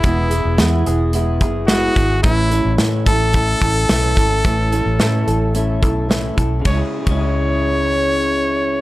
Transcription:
<<
  \new Staff \with { instrumentName = "Trumpet" } { \time 4/4 \key cis \minor \tempo 4 = 109 e'4. r4. fis'4 | e'4 r8 a'2~ a'8~ | a'2. r4 | cis''16 r8 cis''2.~ cis''16 | }
  \new Staff \with { instrumentName = "Clean electric guitar" } { \time 4/4 \key cis \minor <e b e' gis'>8 b8 e'8 gis'8 e'8 gis'8 e'8 gis'8 | a,8 cis'8 e'8 a'8 e'8 a'8 e'8 a'8 | a,8 cis'8 e'8 a'8 e'8 a'8 e'8 a'8 | <cis gis cis' e' gis'>16 r8 <cis gis cis' e' gis'>2.~ <cis gis cis' e' gis'>16 | }
  \new Staff \with { instrumentName = "Steel-string acoustic guitar" } { \time 4/4 \key cis \minor <e gis b e' gis'>8 <b e' gis'>8 <e gis b e' gis'>8 <b e' gis'>8 <gis b e' gis'>8 <b e' gis'>8 <e gis b e' gis'>8 <b e' gis'>8 | <a, e a cis' e' a'>8 <a cis' e' a'>8 <a, e a cis' e' a'>8 <a cis' e' a'>8 <a cis' e' a'>8 <a cis' e' a'>8 <a, e a cis' e' a'>8 <a cis' e' a'>8 | <a, e a cis' e' a'>8 <a cis' e' a'>8 <a, e a cis' e' a'>8 <a cis' e' a'>8 <a cis' e' a'>8 <a cis' e' a'>8 <a, e a cis' e' a'>8 <a cis' e' a'>8 | <cis gis cis' e' gis'>16 r8 <cis gis cis' e' gis'>2.~ <cis gis cis' e' gis'>16 | }
  \new Staff \with { instrumentName = "Fingered electric bass" } { \clef bass \time 4/4 \key cis \minor e,,8. e,,16 e,8 e,,4 fis,,4 gis,,8 | a,,8. a,,16 a,8 a,,4 a,,8 b,,8 gis,,8 | a,,8. a,,16 a,8 a,,4 b,,4 b,,8 | cis,16 r8 cis,2.~ cis,16 | }
  \new DrumStaff \with { instrumentName = "Drums" } \drummode { \time 4/4 <hh bd>8 hh8 <hh sn>8 hh8 hh8 <hh bd>8 <hh sn>8 <hh bd>8 | <hh bd>8 hh8 <hh sn>8 <hh bd>8 <hh bd>8 <hh bd>8 <hh sn>8 <hh bd>8 | <hh bd>8 hh8 <hh sn>8 hh8 hh8 <hh bd>8 <hh sn>8 <hh bd>8 | <bd cymr>8. <bd cymr>16 r4 r4 r4 | }
>>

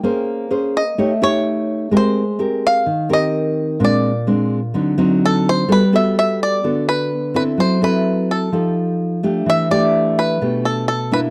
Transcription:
<<
  \new Staff \with { instrumentName = "Five-string banjo" } { \time 4/4 \key bes \mixolydian \tempo 4 = 127 g''8 r4 ees''4 cis''4. | c''4 r8 f''4 ees''4. | d''4 r2 a'8 c''8 | \key g \major b'8 e''8 e''8 d''4 b'4 b'8 |
c''8 b'4 a'4 r4. | e''8 d''4 b'4 a'8 a'8 b'8 | }
  \new Staff \with { instrumentName = "Nylon-string guitar" } { \time 4/4 \key bes \mixolydian << { <des' aes' c''>4 <des' aes' c''>8 r8 <dis' g' cis''>8 <dis' g' cis''>4. | <c' g' bes'>8 r8 <c' g' bes'>4 r8 <c' g' bes'>4. | <aes c' d'>8 r8 <aes c' d'>8 r8 <fis c' ees'>8 <fis c' ees'>4. | \key g \major <b fis' a'>8 <b fis' a'>4. <b fis' a'>4 r8 <c' e' a'>8~ |
<c' e' a'>8 <c' e' a'>4. <ees' g' a'>4. <a d' g'>8~ | <a d' g'>8 <a d' g'>4. <a d' g'>4 r8 <bes d' e'>8 | } \\ { bes2 a2 | aes2 ees2 | bes,2 d2 | g2 d2 |
fis2 f2 | e2 b,2 | } >> }
>>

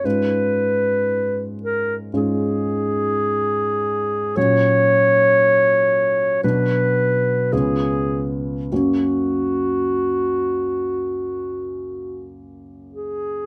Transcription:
<<
  \new Staff \with { instrumentName = "Clarinet" } { \time 4/4 \key fis \major \tempo 4 = 54 b'4. ais'8 gis'2 | cis''2 b'4 gis'8. r16 | fis'2. r8 gis'8 | }
  \new Staff \with { instrumentName = "Grand piano" } { \time 4/4 \key fis \major <gis, gis cis' eis'>2 <gis, gis cis' eis'>2 | <ais, fis cis' fis'>2 <b, fis d' fis'>4 <cis, b cis' eis'>4 | <fis, ais cis' fis'>1 | }
>>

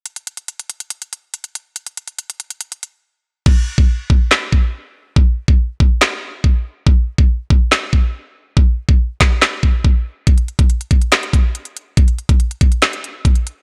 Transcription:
\new DrumStaff \with { instrumentName = "Drums" } \drummode { \time 4/4 \tempo 4 = 141 hh16 hh16 hh16 hh16 hh16 hh16 hh16 hh16 hh16 hh16 hh8 hh16 hh16 hh8 | hh16 hh16 hh16 hh16 hh16 hh16 hh16 hh16 hh16 hh16 hh8 r4 | <cymc bd>8. bd16 r8 bd8 <hc sn>8 bd8 r4 | bd8. bd16 r8 bd8 <hc sn>4 bd4 |
bd8. bd16 r8 bd8 <hc sn>8 bd8 r4 | bd8. bd16 r8 <hc bd sn>8 <hc sn>8 bd8 bd4 | <hh bd>16 hh16 hh16 <hh bd>16 hh16 hh16 <hh bd>16 hh16 <hc hh sn>16 hh16 <hh bd>8 hh16 hh16 hh8 | <hh bd>16 hh16 hh16 <hh bd>16 hh16 hh16 <hh bd>16 hh16 <hc hh sn>16 hh16 hh8 <hh bd>16 hh16 hh8 | }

